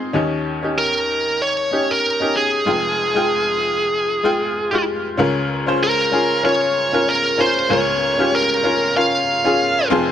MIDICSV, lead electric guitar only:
0, 0, Header, 1, 2, 480
1, 0, Start_track
1, 0, Tempo, 630252
1, 106, Time_signature, 4, 2, 24, 8
1, 7705, End_track
2, 0, Start_track
2, 0, Title_t, "Lead electric guitar"
2, 0, Program_c, 0, 29
2, 597, Note_on_c, 0, 70, 72
2, 1081, Note_on_c, 0, 73, 82
2, 1086, Note_off_c, 0, 70, 0
2, 1454, Note_on_c, 0, 70, 76
2, 1459, Note_off_c, 0, 73, 0
2, 1800, Note_off_c, 0, 70, 0
2, 1803, Note_on_c, 0, 68, 61
2, 3686, Note_off_c, 0, 68, 0
2, 4443, Note_on_c, 0, 70, 71
2, 4885, Note_off_c, 0, 70, 0
2, 4914, Note_on_c, 0, 73, 77
2, 5398, Note_on_c, 0, 70, 81
2, 5405, Note_off_c, 0, 73, 0
2, 5640, Note_off_c, 0, 70, 0
2, 5640, Note_on_c, 0, 72, 79
2, 5869, Note_off_c, 0, 72, 0
2, 5872, Note_on_c, 0, 73, 93
2, 6358, Note_on_c, 0, 70, 90
2, 6363, Note_off_c, 0, 73, 0
2, 6802, Note_off_c, 0, 70, 0
2, 6832, Note_on_c, 0, 77, 93
2, 7518, Note_off_c, 0, 77, 0
2, 7705, End_track
0, 0, End_of_file